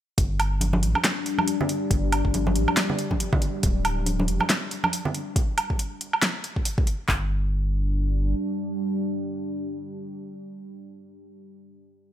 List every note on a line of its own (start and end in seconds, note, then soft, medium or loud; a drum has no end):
0.18 0.84 G1 loud
0.18 5.41 G3 medium
0.18 5.41 D4 medium
0.18 kick loud
0.18 closed hi-hat medium
0.40 closed hi-hat medium
0.40 low woodblock medium
0.61 closed hi-hat medium
0.61 high conga medium
0.73 high conga loud
0.83 0.94 A1 medium
0.83 closed hi-hat medium
0.95 high conga medium
0.95 low woodblock medium
1.04 snare loud
1.04 clap loud
1.04 closed hi-hat medium
1.26 closed hi-hat medium
1.38 high conga medium
1.38 low woodblock medium
1.48 closed hi-hat medium
1.61 low conga loud
1.69 closed hi-hat medium
1.91 2.23 G1 loud
1.91 kick loud
1.91 closed hi-hat medium
2.12 closed hi-hat medium
2.12 low woodblock medium
2.25 2.57 G1 loud
2.25 kick medium
2.34 closed hi-hat medium
2.34 high conga medium
2.47 high conga loud
2.55 2.67 A1 medium
2.55 closed hi-hat medium
2.68 high conga medium
2.68 low woodblock medium
2.77 snare loud
2.77 clap loud
2.77 closed hi-hat medium
2.90 low conga medium
2.99 closed hi-hat medium
3.11 kick medium
3.11 high conga medium
3.20 closed hi-hat medium
3.33 kick loud
3.33 low conga loud
3.42 closed hi-hat medium
3.63 4.29 D1 loud
3.63 kick loud
3.63 closed hi-hat medium
3.85 closed hi-hat medium
3.85 low woodblock medium
4.06 closed hi-hat medium
4.06 high conga medium
4.20 high conga medium
4.28 4.40 F1 loud
4.28 closed hi-hat medium
4.40 high conga medium
4.40 low woodblock medium
4.50 snare loud
4.50 clap medium
4.50 closed hi-hat medium
4.71 closed hi-hat medium
4.84 high conga medium
4.84 low woodblock medium
4.93 closed hi-hat medium
5.05 low conga loud
5.14 closed hi-hat medium
5.36 kick loud
5.36 closed hi-hat medium
5.58 closed hi-hat medium
5.58 low woodblock medium
5.70 kick medium
5.79 closed hi-hat medium
6.01 closed hi-hat soft
6.13 low woodblock medium
6.22 snare loud
6.22 clap medium
6.22 closed hi-hat medium
6.44 closed hi-hat medium
6.56 kick medium
6.65 closed hi-hat medium
6.78 kick loud
6.87 closed hi-hat medium
7.09 8.34 G1 loud
7.09 11.35 G3 medium
7.09 11.35 D4 medium
7.09 kick loud
7.09 clap medium